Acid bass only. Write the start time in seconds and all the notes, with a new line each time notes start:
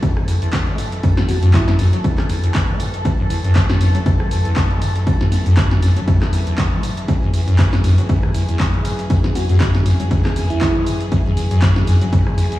0.03 F#1
0.17 F#2
0.28 E2
0.42 E2
0.67 A3
0.78 F#2
1.03 F#2
1.18 F#2
1.29 E2
1.43 F#2
1.54 F#2
1.68 F#2
1.79 F#2
1.93 F#3
2.04 F#1
2.18 F#2
2.29 E2
2.43 E2
2.69 A3
2.80 F#2
3.05 F#2
3.19 F#2
3.30 E2
3.44 F#2
3.56 F#2
3.70 F#2
3.81 F#2
3.95 F#3
4.06 F#1
4.20 F#2
4.31 E2
4.45 E2
4.70 A3
4.82 F#2
5.07 F#2
5.21 F#2
5.32 E2
5.46 F#2
5.57 F#2
5.71 F#2
5.82 F#2
5.96 F#3
6.07 F#1
6.21 F#2
6.33 E2
6.47 E2
6.72 A3
6.83 F#2
7.08 F#2
7.22 F#2
7.34 E2
7.48 F#2
7.59 F#2
7.73 F#2
7.84 F#2
7.98 F#3
8.09 F#1
8.23 F#2
8.34 E2
8.48 E2
8.74 A3
8.85 F#2
9.10 F#2
9.24 F#2
9.35 E2
9.49 F#2
9.60 F#2
9.74 F#2
9.86 F#2
10.00 F#3
10.11 F#1
10.25 F#2
10.36 E2
10.50 E2
10.75 A3
10.87 F#2
11.12 F#2
11.26 F#2
11.37 E2
11.51 F#2
11.62 F#2
11.76 F#2
11.87 F#2
12.02 F#3
12.13 F#1
12.27 F#2
12.38 E2
12.52 E2